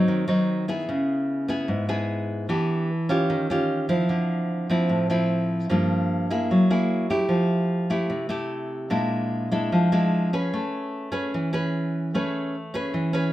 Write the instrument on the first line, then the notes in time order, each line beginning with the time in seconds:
nylon-string guitar
Already playing: F#3 C4 D#4
0.08 D#3
0.28 F#3 C4 D#4
0.68 B3 E4 G#4
0.89 C#3
1.48 B3 E4 G#4
1.68 G#2
1.89 B3 E4 G#4
2.49 E3 B3 D4 G4
3.09 C#4 F4 G4
3.30 D#3
3.50 C#4 F4 G4
3.89 F3 C4 E4
4.09 D3
4.70 F3 C4 E4
4.89 A2
5.10 F3 C4 E4
5.70 G2 F3 A#3 D4
6.30 A#3 E4 G#4
6.51 F#3
6.70 A#3 E4 G#4
7.10 A3 E4 G4
7.29 F3
7.90 A3 E4 G4
8.10 C3
8.29 A3 E4 G4
8.90 A#2 G#3 D4 E4
9.51 G#3 D4 E4
9.72 F3
9.92 G#3 D4 E4
10.33 C#4 G#4 B4
10.54 A3
11.12 C#4 G#4 B4
11.34 E3
11.53 C#4 G#4 B4
12.14 A3 C#4 G#4 B4
12.74 C#4 G#4 B4
12.94 E3
13.13 C#4 G#4 B4